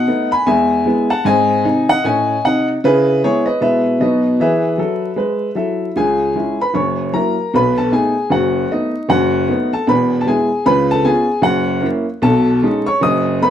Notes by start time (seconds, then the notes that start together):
Already playing: D#5 F#5
0.07 A3 B3 D#4
0.32 G#5 B5
0.46 E2 G#3 E5 G#5
0.86 G#3 B3 E4
1.10 F#5 A5
1.25 G#2 C4 D#5 G#5
1.64 C3 D#4
1.89 D#5 F#5
2.04 A2 C#4 D#5 G#5
2.45 C3 D#4 D#5 F#5
2.84 C#3 E4 G#4 B4
3.24 G#3 B3 E4 G#4 C#5
3.46 B4 D#5
3.60 B2 G#3 B3 E4 B4 E5
4.00 B2 F#3 B3 D#4 F#4 B4 D#5
4.40 E3 G#4 B4 E5
4.78 F#3 A4
5.16 G#3 B4
5.55 F#3 E4 A4 E5
5.96 C#2 C#3 G#4 G#5
6.36 G#3 C#4 E4
6.61 B4 B5
6.74 F#1 F#2 C#5 C#6
7.13 F#3 A#3 E4 A#4 A#5
7.54 B1 B2 B4 B5
7.78 A4 A5
7.92 A3 B3 D#4 G#4 G#5
8.30 F#1 F#2 F#4 F#5
8.71 A3 B3 D#4 D#5
9.09 F#1 F#2 F#4 F#5
9.48 A3 B3 D#4
9.73 A4 A5
9.87 E1 E2 B4 B5
10.21 A5
10.27 G#3 B3 E4 G#4 G#5
10.66 C#2 C#3 B4 B5
10.91 A4 A5
11.05 B3 C#4 F4 G#4 G#5
11.42 F#1 F#2 F#4 F#5
11.81 A#3 C#4 E4
12.22 B1 B2 A4 A5
12.63 G#3 C#4 D#4
12.86 C#5 C#6
13.01 F#1 F#2 D#5 D#6
13.41 A3 B3 B4 B5